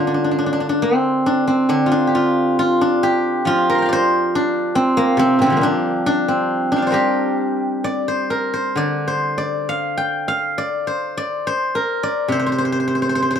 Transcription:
0.00 1.68 D3 medium
0.00 0.82 G3 medium
0.00 0.82 C4 medium
0.00 1.86 F4 medium
0.00 0.54 G4 medium
0.07 0.14 D4 medium
0.14 0.24 D4 medium
0.24 0.31 D4 medium
0.31 0.38 D4 medium
0.38 0.46 D4 medium
0.46 0.52 D4 medium
0.53 0.60 D4 medium
0.60 0.69 D4 medium
0.69 1.26 D4 medium
0.82 1.47 C4 medium
1.26 1.69 D4 medium
1.48 4.48 C4 medium
1.69 4.31 D3 medium
1.69 1.91 D4 medium
1.86 2.14 F4 medium
1.92 2.81 D4 medium
2.07 3.03 G4 medium
2.15 2.59 F4 medium
2.59 3.47 F4 medium
2.81 4.35 D4 medium
3.03 5.38 G4 medium
3.45 5.49 F3 medium
3.45 6.00 F4 medium
3.70 5.82 A#4 medium
3.75 5.19 A#5 soft
3.75 5.06 C6 soft
3.82 5.52 F5 medium
3.82 5.37 G5 soft
3.89 5.91 C5 loud
3.89 5.73 D5 medium
4.35 5.63 D4 medium
4.75 5.19 C4 medium
4.97 5.56 A#3 medium
5.17 5.42 C3 medium
5.17 5.41 C4 loud
5.39 5.67 A#2 soft
5.39 5.61 C4 medium
5.43 5.63 C3 soft
5.43 5.67 D3 soft
5.50 6.98 F3 medium
5.50 6.92 G3 medium
5.57 8.79 A#3 medium
5.61 6.28 C4 medium
5.61 6.06 D4 medium
6.06 6.71 D4 medium
6.28 9.29 C4 medium
6.72 9.51 D4 medium
6.76 8.45 F5 soft
6.76 8.32 G5 soft
6.82 7.84 D5 soft
6.87 8.30 A#4 medium
6.87 8.08 C5 medium
6.92 9.68 G3 medium
6.92 9.29 G4 medium
7.84 8.77 D5 medium
8.08 8.53 C5 medium
8.30 10.43 A#4 medium
8.54 9.07 C5 medium
8.76 11.44 D3 medium
8.76 9.37 D5 medium
9.07 10.87 C5 medium
9.38 10.58 D5 medium
9.69 10.28 F5 medium
9.97 11.53 G5 medium
10.28 11.95 F5 medium
10.58 11.17 D5 medium
10.87 11.46 C5 medium
11.17 12.03 D5 medium
11.47 12.32 C5 medium
11.75 13.40 A#4 medium
12.03 13.40 D5 medium
12.28 13.40 C3 medium
12.28 12.39 C5 medium
12.39 12.46 C5 medium
12.46 12.52 C5 medium
12.52 12.58 C5 medium
12.58 12.65 C5 medium
12.65 12.72 C5 medium
12.72 12.79 C5 medium
12.80 12.87 C5 medium
12.88 12.95 C5 medium
12.95 13.02 C5 medium
13.02 13.09 C5 medium
13.09 13.15 C5 medium
13.15 13.22 C5 medium
13.22 13.30 C5 medium
13.31 13.35 C5 medium
13.35 13.40 C5 medium

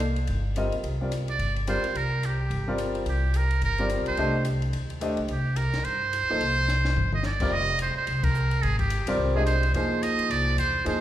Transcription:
0.00 0.25 C2 medium
0.16 ride soft
0.27 0.70 G1 medium
0.27 ride medium
0.56 0.71 G3 medium
0.56 0.71 C4 soft
0.56 0.71 F4 soft
0.56 0.71 A#4 medium
0.56 0.72 D#5 medium
0.56 hi-hat pedal soft
0.56 ride soft
0.72 0.83 A#1 medium
0.72 ride soft
0.83 1.36 C2 medium
0.83 ride soft
1.01 1.11 G3 soft
1.01 1.11 C4 soft
1.01 1.11 F4 soft
1.01 1.11 A#4 soft
1.01 1.12 D5 medium
1.12 hi-hat pedal soft
1.12 ride medium
1.28 1.55 D5 medium
1.28 ride soft
1.39 1.80 G1 medium
1.39 ride soft
1.56 ride soft
1.67 1.82 G3 medium
1.67 1.82 C4 soft
1.67 1.83 F4 medium
1.67 1.83 A#4 medium
1.67 1.98 C5 medium
1.67 1.83 D5 medium
1.67 hi-hat pedal soft
1.67 ride medium
1.84 muted upright bass stroke soft
1.84 ride soft
1.94 2.48 C2 medium
1.94 2.27 A#4 medium
1.94 ride soft
2.23 2.80 G4 medium
2.23 hi-hat pedal soft
2.23 ride medium
2.50 3.03 G1 medium
2.50 ride soft
2.68 3.04 G3 medium
2.68 3.04 C4 medium
2.68 3.05 F4 medium
2.68 3.04 A#4 medium
2.68 3.05 D5 medium
2.78 hi-hat pedal soft
2.78 ride medium
2.95 ride soft
3.06 3.59 C2 medium
3.06 3.38 G4 medium
3.06 ride soft
3.34 3.63 A#4 medium
3.34 hi-hat pedal soft
3.34 ride medium
3.51 ride soft
3.62 3.96 G1 medium
3.62 3.89 A#4 medium
3.62 ride soft
3.78 4.16 G3 medium
3.78 4.16 C4 medium
3.78 4.16 F4 medium
3.78 4.17 A#4 medium
3.78 4.16 D5 medium
3.78 ride soft
3.90 hi-hat pedal soft
3.90 ride medium
3.99 4.07 C2 medium
4.06 4.17 A#1 medium
4.06 4.44 C5 medium
4.06 ride soft
4.17 4.70 C2 medium
4.17 4.33 A3 medium
4.17 4.33 D4 medium
4.17 4.33 G4 medium
4.17 4.33 C5 medium
4.17 4.33 D#5 medium
4.17 ride soft
4.45 hi-hat pedal soft
4.45 ride medium
4.62 ride soft
4.73 5.15 D#2 medium
4.73 ride medium
4.90 ride soft
5.01 5.16 A3 medium
5.01 5.16 D4 soft
5.01 5.16 G4 soft
5.01 5.17 C5 medium
5.01 5.17 D#5 medium
5.01 hi-hat pedal soft
5.01 ride medium
5.17 5.28 B1 medium
5.17 ride soft
5.28 5.70 C2 medium
5.28 5.58 G4 medium
5.28 ride soft
5.56 5.86 A#4 medium
5.56 hi-hat pedal soft
5.56 ride medium
5.73 5.84 B1 medium
5.73 snare soft
5.73 ride soft
5.84 6.19 G2 medium
5.84 7.13 C5 loud
5.84 ride soft
6.13 hi-hat pedal soft
6.13 ride medium
6.22 6.31 D#2 medium
6.30 6.40 D2 medium
6.30 6.40 F3 medium
6.30 6.40 A#3 medium
6.30 6.40 D#4 medium
6.30 6.41 A4 medium
6.30 6.41 C5 medium
6.41 6.94 C2 medium
6.41 ride soft
6.68 snare soft
6.68 hi-hat pedal medium
6.85 snare soft
6.96 7.49 G1 medium
6.96 floor tom medium
7.12 7.24 D#5 medium
7.12 mid tom medium
7.23 7.54 D5 medium
7.23 snare soft
7.23 hi-hat pedal soft
7.40 7.51 G3 medium
7.40 7.51 C4 medium
7.40 7.51 F4 medium
7.40 7.51 A#4 medium
7.40 7.52 D5 medium
7.40 kick medium
7.40 crash medium
7.51 7.93 F1 medium
7.51 7.80 D#5 loud
7.79 7.96 C5 medium
7.79 hi-hat pedal medium
7.79 ride medium
7.96 8.25 C5 medium
7.96 muted upright bass stroke soft
8.07 8.61 C2 medium
8.07 ride medium
8.23 8.64 A#4 medium
8.23 kick medium
8.23 ride medium
8.35 hi-hat pedal medium
8.51 ride soft
8.62 9.04 G#1 medium
8.62 8.79 G#4 medium
8.62 ride soft
8.79 9.16 G4 medium
8.79 kick medium
8.79 ride soft
8.90 hi-hat pedal medium
8.90 ride medium
9.07 9.17 E1 medium
9.07 9.34 G3 medium
9.07 9.34 C4 medium
9.07 9.34 F4 medium
9.07 9.34 A#4 medium
9.07 9.34 D5 medium
9.07 ride medium
9.17 9.71 C2 medium
9.35 9.46 G#3 medium
9.35 9.46 D4 medium
9.35 9.46 G4 medium
9.35 9.45 G#4 medium
9.35 9.46 C5 medium
9.35 9.46 D#5 medium
9.46 9.72 C5 medium
9.46 hi-hat pedal medium
9.46 ride medium
9.63 ride soft
9.73 10.15 F2 medium
9.73 10.51 F3 medium
9.73 10.51 A#3 medium
9.73 10.51 D#4 medium
9.73 10.52 G#4 medium
9.73 10.04 C5 medium
9.73 10.52 C5 medium
9.73 ride medium
10.03 10.32 D#5 medium
10.03 hi-hat pedal medium
10.03 ride medium
10.18 muted upright bass stroke soft
10.18 ride soft
10.30 10.56 C2 medium
10.30 10.58 D5 loud
10.30 ride medium
10.57 10.83 E2 medium
10.57 10.84 C5 medium
10.57 hi-hat pedal medium
10.57 ride medium
10.85 11.01 F2 medium
10.85 11.00 F3 medium
10.85 11.00 A#3 medium
10.85 11.00 D#4 medium
10.85 11.01 G#4 medium
10.85 11.01 C5 medium
10.85 ride medium

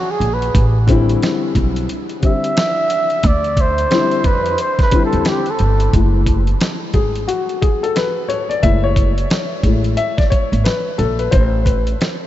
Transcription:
0.00 0.13 F#4 medium
0.11 0.35 G#4 medium
0.20 0.50 A#1 medium
0.20 closed hi-hat medium
0.34 0.67 B4 medium
0.42 closed hi-hat soft
0.55 1.14 A1 loud
0.55 kick loud
0.55 closed hi-hat loud
0.87 1.83 D3 medium
0.87 1.84 G3 medium
0.87 1.85 C4 medium
0.87 1.85 E4 loud
0.87 kick loud
0.87 closed hi-hat medium
1.09 closed hi-hat soft
1.23 snare loud
1.23 closed hi-hat medium
1.55 1.85 B1 medium
1.55 kick medium
1.55 closed hi-hat medium
1.76 closed hi-hat soft
1.89 closed hi-hat medium
2.09 closed hi-hat soft
2.21 2.48 D3 medium
2.21 2.48 G3 medium
2.21 2.49 C4 medium
2.21 2.50 G4 medium
2.21 kick medium
2.21 closed hi-hat medium
2.26 3.28 E5 loud
2.44 closed hi-hat medium
2.57 snare loud
2.57 closed hi-hat loud
2.90 closed hi-hat medium
3.10 closed hi-hat soft
3.23 3.84 D2 loud
3.23 3.62 D5 loud
3.23 kick loud
3.23 closed hi-hat loud
3.44 closed hi-hat soft
3.57 4.28 C5 loud
3.57 kick medium
3.57 closed hi-hat medium
3.78 closed hi-hat soft
3.90 4.17 D3 medium
3.90 4.17 G3 medium
3.90 4.18 C4 medium
3.90 4.18 E4 medium
3.90 snare loud
3.90 closed hi-hat medium
4.11 closed hi-hat soft
4.24 4.55 F2 medium
4.24 4.60 B4 medium
4.24 kick medium
4.24 closed hi-hat medium
4.46 closed hi-hat soft
4.58 4.81 C5 medium
4.58 closed hi-hat medium
4.79 kick medium
4.79 snare soft
4.79 closed hi-hat soft
4.83 5.03 B4 loud
4.91 5.42 D3 medium
4.91 5.43 G3 medium
4.91 5.43 C4 medium
4.91 5.44 E4 medium
4.91 kick medium
4.91 closed hi-hat medium
5.05 5.29 A4 medium
5.13 5.25 E2 loud
5.13 closed hi-hat soft
5.25 5.52 G4 medium
5.25 snare loud
5.25 closed hi-hat medium
5.46 closed hi-hat soft
5.51 5.95 A4 medium
5.59 5.90 G1 medium
5.59 closed hi-hat medium
5.80 closed hi-hat soft
5.93 6.53 F#1 loud
5.93 6.41 G#3 medium
5.93 6.42 A3 medium
5.93 6.42 E4 medium
5.93 kick loud
5.93 closed hi-hat medium
6.26 kick medium
6.26 closed hi-hat medium
6.47 closed hi-hat soft
6.61 snare loud
6.61 closed hi-hat medium
6.94 7.24 G#1 medium
6.94 7.26 G#4 medium
6.94 kick medium
6.94 closed hi-hat medium
7.16 closed hi-hat soft
7.28 7.63 F#4 medium
7.28 closed hi-hat medium
7.49 closed hi-hat soft
7.62 7.83 G#4 medium
7.62 kick medium
7.62 closed hi-hat medium
7.83 7.96 A4 medium
7.83 closed hi-hat soft
7.96 8.31 B4 loud
7.96 snare medium
7.96 closed hi-hat medium
8.29 8.51 C#5 loud
8.29 closed hi-hat medium
8.49 8.63 D5 loud
8.49 closed hi-hat soft
8.63 9.23 F#1 loud
8.63 9.11 G#3 medium
8.63 9.11 A3 medium
8.63 9.12 E4 medium
8.63 8.84 E5 loud
8.63 kick loud
8.63 closed hi-hat medium
8.84 9.81 C#5 loud
8.96 kick loud
8.96 closed hi-hat medium
9.18 closed hi-hat soft
9.30 snare loud
9.30 closed hi-hat medium
9.63 9.94 A1 medium
9.63 9.95 G#3 medium
9.63 9.95 A3 soft
9.63 9.95 E4 medium
9.63 kick medium
9.63 closed hi-hat medium
9.84 closed hi-hat soft
9.97 10.19 E5 loud
9.97 closed hi-hat medium
10.17 10.22 D5 medium
10.17 kick medium
10.17 snare soft
10.17 closed hi-hat soft
10.30 10.62 C#5 medium
10.30 kick medium
10.30 closed hi-hat medium
10.52 10.64 G#1 medium
10.52 closed hi-hat soft
10.64 11.00 B4 loud
10.64 snare medium
10.64 closed hi-hat medium
10.98 11.29 A#1 medium
10.98 11.20 A4 medium
10.98 closed hi-hat medium
11.19 11.33 B4 medium
11.19 closed hi-hat soft
11.31 11.92 A1 loud
11.31 11.67 C5 loud
11.31 kick loud
11.31 closed hi-hat loud
11.65 12.27 B4 medium
11.65 kick medium
11.65 closed hi-hat medium
11.87 closed hi-hat soft
12.01 snare loud
12.01 closed hi-hat medium

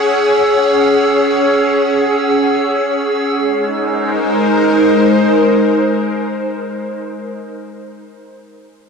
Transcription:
0.00 3.33 C#4 medium
0.00 3.35 G#4 medium
0.00 3.35 C#5 medium
0.00 3.33 F#5 medium
0.00 3.35 E6 medium
3.33 6.46 G#3 medium
3.45 6.58 D#4 medium
3.57 6.62 A#4 medium
3.70 6.63 C5 medium

